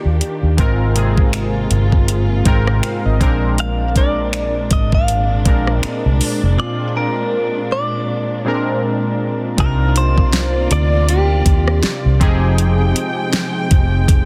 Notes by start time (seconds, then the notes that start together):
Already playing: D#3 A#3 D4 F4 G4 D5
0.05 D#2
0.21 closed hi-hat
0.43 D#2
0.57 G#1 G#2 C3 G#3 C4 F4 A#4, kick, closed hi-hat
0.95 C3 G#3 A#3 F4 G#4, closed hi-hat
1.03 C4
1.18 kick
1.33 finger snap, closed hi-hat
1.71 G1, closed hi-hat
1.92 kick
2.08 closed hi-hat
2.45 G#1 G#2 G#3 C4 F4 A#4 G5, kick, closed hi-hat
2.67 cross-stick
2.83 F5, finger snap, closed hi-hat
3.05 G#1 D#5
3.20 A#1 A#2 G#3 C4 D4 A#4 C5, kick, closed hi-hat
3.58 F5, closed hi-hat
3.95 A#2 G#3 C4 D4 A#4 D5, kick, closed hi-hat
4.33 finger snap, closed hi-hat
4.71 G#1 D#5, kick, closed hi-hat
4.92 F5, kick
5.08 closed hi-hat
5.45 A#1 A#2 G#3 C4 D4 A#4, kick, closed hi-hat
5.67 cross-stick
5.79 D#5
5.83 finger snap, muted fingered electric bass stroke, closed hi-hat
6.06 C2
6.21 open hi-hat
6.43 F1
6.57 A#2 G#3 C4 D4 F4 D5
6.95 A#2 G#3 C4 D4 A#4
7.72 D5
8.45 A#2 G#3 C4 D4 A#4 C5
9.57 C2 C3 A#3 C4 D4 D#4 F4 A#4 D5, kick, closed hi-hat
9.96 C5, closed hi-hat
10.18 kick
10.33 snare, closed hi-hat
10.71 D2 D5, closed hi-hat
11.09 G4, closed hi-hat
11.46 D#2, kick, closed hi-hat
11.68 cross-stick
11.83 muted fingered electric bass stroke, snare, closed hi-hat
12.05 C2
12.20 F3 G#3 C4 D#4 G4 G#4 G5, kick, closed hi-hat
12.58 closed hi-hat
12.96 closed hi-hat
13.33 snare, closed hi-hat
13.71 F1, kick, closed hi-hat
14.08 kick, closed hi-hat